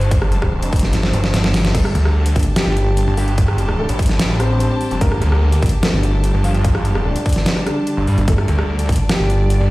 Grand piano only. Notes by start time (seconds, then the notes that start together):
1.75 A3 A4
2.56 G3 G4
3.18 G3 G4
3.79 A3 A4
4.40 C4 C5
5.01 A#3 A#4
5.83 A3 A4
6.44 F3 F4
7.05 D3 D4
7.67 D3 D4
8.28 A3 A4
9.09 G3 G4